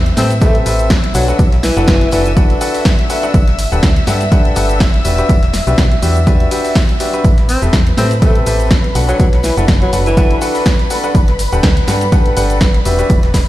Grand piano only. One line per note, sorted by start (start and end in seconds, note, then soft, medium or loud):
0.17 0.31 C4 medium
0.17 0.31 G4 medium
0.17 0.31 A4 medium
0.17 0.31 B4 medium
0.17 0.31 E5 medium
0.41 0.63 C4 medium
0.41 0.63 G4 medium
0.41 0.63 A4 medium
0.41 0.63 B4 medium
0.41 0.63 E5 loud
0.66 0.87 C4 loud
0.66 0.87 G4 medium
0.66 0.87 A4 medium
0.66 0.87 B4 medium
0.66 0.87 E5 loud
1.15 1.26 D4 medium
1.15 1.26 F#4 medium
1.15 1.26 A4 medium
1.15 1.26 B4 medium
1.15 1.26 F#5 medium
1.28 1.40 D4 medium
1.28 1.40 F#4 medium
1.28 1.40 A4 medium
1.28 1.40 B4 medium
1.28 1.40 F#5 loud
1.77 1.88 D4 medium
1.77 1.88 F#4 medium
1.77 1.88 A4 medium
1.77 1.88 B4 medium
1.77 1.88 F#5 medium
2.12 2.26 D4 medium
2.12 2.26 F#4 medium
2.12 2.26 A4 medium
2.12 2.26 B4 medium
2.12 2.26 F#5 medium
2.37 2.58 D4 loud
2.37 2.58 F#4 medium
2.37 2.58 A4 medium
2.37 2.58 B4 medium
2.37 2.58 F#5 loud
2.61 2.82 D4 loud
2.61 2.82 F#4 medium
2.61 2.82 A4 medium
2.61 2.82 B4 medium
2.61 2.82 F#5 loud
3.10 3.21 D4 medium
3.10 3.21 F#4 medium
3.10 3.21 A4 medium
3.10 3.21 B4 medium
3.10 3.21 F#5 medium
3.23 3.33 D4 loud
3.23 3.33 F#4 medium
3.23 3.33 A4 medium
3.23 3.33 B4 medium
3.23 3.33 F#5 loud
3.72 3.83 D4 medium
3.72 3.83 G4 medium
3.72 3.83 A4 medium
3.72 3.83 B4 medium
3.72 3.83 F#5 medium
4.07 4.21 D4 medium
4.07 4.21 G4 medium
4.07 4.21 A4 medium
4.07 4.21 B4 medium
4.07 4.21 F#5 loud
4.32 4.54 D4 loud
4.32 4.54 G4 medium
4.32 4.54 A4 medium
4.32 4.54 B4 medium
4.32 4.54 F#5 loud
4.56 4.77 D4 loud
4.56 4.77 G4 medium
4.56 4.77 A4 medium
4.56 4.77 B4 medium
4.56 4.77 F#5 loud
5.05 5.16 D4 medium
5.05 5.16 F#4 medium
5.05 5.16 G4 medium
5.05 5.16 B4 medium
5.05 5.16 E5 medium
5.18 5.30 D4 medium
5.18 5.30 F#4 medium
5.18 5.30 G4 medium
5.18 5.30 B4 medium
5.18 5.30 E5 loud
5.67 5.79 D4 medium
5.67 5.79 F#4 medium
5.67 5.79 G4 medium
5.67 5.79 B4 medium
5.67 5.79 E5 medium
6.02 6.16 D4 medium
6.02 6.16 F#4 medium
6.02 6.16 G4 medium
6.02 6.16 B4 medium
6.02 6.16 E5 medium
6.27 6.49 D4 medium
6.27 6.49 F#4 medium
6.27 6.49 G4 medium
6.27 6.49 B4 medium
6.27 6.49 E5 loud
6.51 6.72 D4 loud
6.51 6.72 F#4 medium
6.51 6.72 G4 medium
6.51 6.72 B4 medium
6.51 6.72 E5 loud
7.00 7.11 D4 medium
7.00 7.11 F#4 medium
7.00 7.11 G4 medium
7.00 7.11 B4 medium
7.00 7.11 E5 medium
7.13 7.23 D4 medium
7.13 7.23 F#4 medium
7.13 7.23 G4 medium
7.13 7.23 B4 medium
7.13 7.23 E5 loud
7.62 7.74 C4 medium
7.62 7.74 G4 medium
7.62 7.74 A4 medium
7.62 7.74 B4 medium
7.62 7.74 E5 medium
7.98 8.11 C4 medium
7.98 8.11 G4 medium
7.98 8.11 A4 medium
7.98 8.11 B4 medium
7.98 8.11 E5 medium
8.22 8.44 C4 loud
8.22 8.44 G4 medium
8.22 8.44 A4 medium
8.22 8.44 B4 medium
8.22 8.44 E5 loud
8.46 8.67 C4 loud
8.46 8.67 G4 medium
8.46 8.67 A4 medium
8.46 8.67 B4 medium
8.46 8.67 E5 loud
8.95 9.07 D4 medium
8.95 9.07 F#4 medium
8.95 9.07 A4 medium
8.95 9.07 B4 medium
8.95 9.07 F#5 medium
9.09 9.20 D4 medium
9.09 9.20 F#4 medium
9.09 9.20 A4 medium
9.09 9.20 B4 medium
9.09 9.20 F#5 loud
9.57 9.69 D4 medium
9.57 9.69 F#4 medium
9.57 9.69 A4 medium
9.57 9.69 B4 medium
9.57 9.69 F#5 medium
9.93 10.07 D4 medium
9.93 10.07 F#4 medium
9.93 10.07 A4 medium
9.93 10.07 B4 medium
9.93 10.07 F#5 medium
10.17 10.39 D4 medium
10.17 10.39 F#4 medium
10.17 10.39 A4 medium
10.17 10.39 B4 medium
10.17 10.39 F#5 loud
10.42 10.62 D4 loud
10.42 10.62 F#4 medium
10.42 10.62 A4 medium
10.42 10.62 B4 medium
10.42 10.62 F#5 loud
10.90 11.02 D4 medium
10.90 11.02 F#4 medium
10.90 11.02 A4 medium
10.90 11.02 B4 medium
10.90 11.02 F#5 medium
11.04 11.13 D4 medium
11.04 11.13 F#4 medium
11.04 11.13 A4 medium
11.04 11.13 B4 medium
11.04 11.13 F#5 loud
11.53 11.64 D4 medium
11.53 11.64 G4 medium
11.53 11.64 A4 medium
11.53 11.64 B4 medium
11.53 11.64 F#5 medium
11.88 12.02 D4 medium
11.88 12.02 G4 medium
11.88 12.02 A4 medium
11.88 12.02 B4 medium
11.88 12.02 F#5 loud
12.12 12.34 D4 loud
12.12 12.34 G4 medium
12.12 12.34 A4 medium
12.12 12.34 B4 loud
12.12 12.34 F#5 loud
12.37 12.57 D4 loud
12.37 12.57 G4 medium
12.37 12.57 A4 medium
12.37 12.57 B4 medium
12.37 12.57 F#5 loud
12.85 12.97 D4 medium
12.85 12.97 F#4 medium
12.85 12.97 G4 medium
12.85 12.97 B4 medium
12.85 12.97 E5 medium
12.99 13.10 D4 medium
12.99 13.10 F#4 medium
12.99 13.10 G4 medium
12.99 13.10 B4 medium
12.99 13.10 E5 loud